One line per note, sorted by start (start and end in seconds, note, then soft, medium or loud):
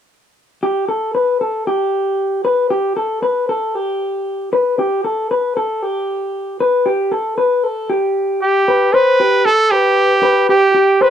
0.63 0.88 G4 medium
0.88 1.14 A4 medium
1.15 1.41 B4 medium
1.41 1.67 A4 medium
1.67 2.41 G4 medium
2.45 2.70 B4 medium
2.70 2.96 G4 medium
2.97 3.22 A4 medium
3.23 3.49 B4 medium
3.49 3.75 A4 medium
3.75 4.49 G4 medium
4.53 4.79 B4 medium
4.79 5.04 G4 medium
5.04 5.30 A4 medium
5.31 5.56 B4 medium
5.57 5.82 A4 medium
5.82 6.56 G4 medium
6.60 6.86 B4 medium
6.86 7.12 G4 medium
7.12 7.37 A4 medium
7.38 7.64 B4 medium
7.64 7.90 A4 medium
7.90 8.63 G4 medium
8.42 8.95 G4 medium
8.68 8.93 B4 medium
8.94 9.47 B4 medium
8.94 9.19 C5 medium
9.20 9.45 G4 medium
9.45 9.73 A4 loud
9.45 9.72 A4 medium
9.71 10.49 G4 medium
9.71 10.20 B4 medium
10.23 10.49 B4 medium
10.49 10.73 G4 medium
10.49 11.03 G4 medium
10.74 11.00 G4 medium
11.01 11.10 B4 medium
11.01 11.10 C5 medium